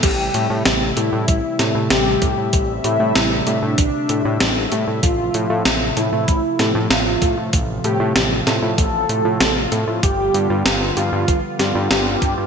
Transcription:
0.03 A1 C3 G3 A3 G4 E5, kick, closed hi-hat, crash
0.34 A2 G4, closed hi-hat
0.50 A2 E4
0.65 A1 G3, snare, closed hi-hat
0.97 A2 E4 G4, closed hi-hat
1.13 A2 E4
1.28 A1 G3, kick, closed hi-hat
1.59 A2 G4, snare, closed hi-hat
1.75 A2 E4
1.90 A1 G3 G4, snare, closed hi-hat
2.22 A2 G4, kick, closed hi-hat
2.37 A2 E4
2.53 A1 G3, kick, closed hi-hat
2.84 A2 E4 G4, closed hi-hat
3.00 A2 E4
3.15 A1 G3, snare, closed hi-hat
3.47 A2 D4 G4, closed hi-hat
3.62 A2 E4
3.78 A1 G3, kick, closed hi-hat
4.09 A2 G4, closed hi-hat
4.25 A2 E4
4.40 A1 G3, snare, closed hi-hat
4.72 A2 G4, closed hi-hat
4.87 A2 E4
5.03 A1 C3 F3 A3 F4, kick, closed hi-hat
5.34 A2 A4, closed hi-hat
5.50 A2 F4
5.65 A1 A3, snare, closed hi-hat
5.97 A2 E4 A4, closed hi-hat
6.12 A2 F4
6.28 A1 A3, kick, closed hi-hat
6.59 A2 A4, snare, closed hi-hat
6.75 A2 F4
6.90 A1 A3 F4, snare, closed hi-hat
7.22 A2 A4, kick, closed hi-hat
7.37 A2 F4
7.53 A1 A3 F4, kick, closed hi-hat
7.84 A2 G4 A4, closed hi-hat
8.00 A2 F4
8.16 A1 A3, snare, closed hi-hat
8.47 A2 A4, snare, closed hi-hat
8.62 A2 F4
8.78 A1 A3, kick, closed hi-hat
9.09 A2 A4, closed hi-hat
9.25 A2 F4
9.41 A1 A3, snare, closed hi-hat
9.72 A2 A4, closed hi-hat
9.87 A2 F4
10.03 G1 D3 G3 B3 G4, kick, closed hi-hat
10.34 G2 G4, closed hi-hat
10.50 G2 F4
10.66 G1 G3, snare, closed hi-hat
10.97 G2 F4 G4, closed hi-hat
11.13 G2 F4
11.28 G1 G3, kick, closed hi-hat
11.59 G2 G4, snare, closed hi-hat
11.75 G2 F4
11.91 G1 G3 G4, snare, closed hi-hat
12.22 G2 G4, kick, closed hi-hat
12.38 G2 F4

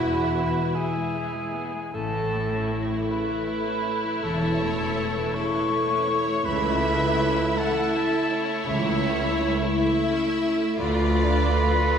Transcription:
Already playing: E1 E2 E3 G#3 B3 E4 F#4 B4 E5 B5
0.14 G#3
0.34 E3 B4
0.53 G#3
0.74 G#3 B3 E4 G#4 G#5
0.94 G#3
1.14 E3 E5
1.34 G#3
1.54 B3 G#4
1.73 G#3
1.93 A1 A2 C#3 A3 E4 A4 A5
2.13 E3
2.32 A3
2.52 C#4
2.71 A3 E4
2.91 E3
3.09 C#3 B4 C#5 B5
3.29 E3
3.47 A3 A4
3.67 C#4
3.86 A3 C#5
4.04 E3
4.22 E1 E2 C#3 E3 A3 E4 A4 C#5 A5
4.42 E3
4.61 A3
4.80 C#4
4.98 A3 E4
5.17 E3
5.34 C#3 A3 E4 A4 C#5 C#6
5.54 E3
5.72 A3 A4 B4
5.90 C#4
6.08 A3 C#5
6.26 E3
6.44 C#2 C#3 E3 A3 E4 B4 E5 B5
6.63 A3
6.82 A3 C#4
7.01 E4
7.20 C#4 E4
7.39 A3
7.57 E3 A3 E4 A4 E5 F#5 A5
7.77 A3
7.94 C#4 E5
8.14 E4
8.30 C#4 C#5 E5
8.50 A3
8.65 C#2 C#3 E3 A3 E4 E5
8.86 A3
9.02 A3 C#4
9.22 E4
9.39 C#4 E4
9.58 A3
9.74 E3 E5
9.93 A3
10.10 C#4 A4
10.28 E4
10.43 C#4 E5
10.62 A3
10.77 D2 D3 A3 F4 B4 D5 B5
10.97 F3
11.13 A3
11.32 D4
11.48 A3 F4
11.67 F3
11.83 D3 A4 D5

